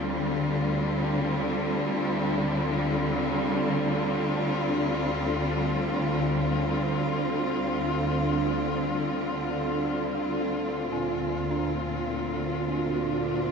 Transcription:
Already playing: synth drone D2 D3, cello section D3 G3 C4 F4
10.90 cello section A#2, synth bell C4, singing bowl F4
11.51 synth bell D4
12.20 cello section A3
12.95 cello section D4

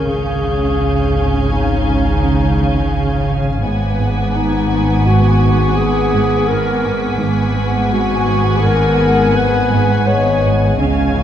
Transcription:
Already playing: clarinet A#4, violin section C#6 G6
0.09 synth drone G#1, double bass section C#2, cello section C#3, viola section C#4, glass harmonica G#4 C#5 F5, clarinet G#4, violin section F5 G#5
0.45 cello section C#3
0.81 cello section C#4
1.16 cello section C#4
1.52 cello section C#3, clarinet D#4
1.88 cello section C#3
2.23 cello section C#4
2.59 cello section C#3
2.94 cello section C#3
3.29 cello section C#3
3.63 double bass section G#1, synth drone G#1, cello section G#2, viola section B3, glass harmonica B3 G#4 F#5, violin section F#5 G#5 D6 B6
4.00 cello section G#2
4.35 cello section G#3, clarinet D#4, violin section C#6
4.72 cello section G#3
5.07 cello section G#2, clarinet F#4
5.43 cello section G#2
5.77 cello section G#3, clarinet G#4
6.15 cello section G#2
6.48 cello section G#2, clarinet A#4, vibraphone F6
6.85 cello section G#2
7.21 synth drone G#1, double bass section G#1, cello section G#2, glass harmonica B3 G#4 F#5, viola section B3, violin section F#5 G#5
7.56 cello section G#2, vibraphone F#5
7.92 cello section G#3, clarinet F#4
8.28 cello section G#3
8.64 cello section G#2, clarinet A#4
9.01 cello section G#2
9.36 cello section G#3, clarinet B4
9.72 cello section G#2
10.07 cello section G#2, clarinet C#5, vibraphone D#5
10.44 cello section G#2
10.79 synth drone G#1, double bass section C#2, cello section C#3, viola section C#4, glass harmonica G#4 C#5 F5, violin section C#5 F5 G#5
11.15 cello section C#3

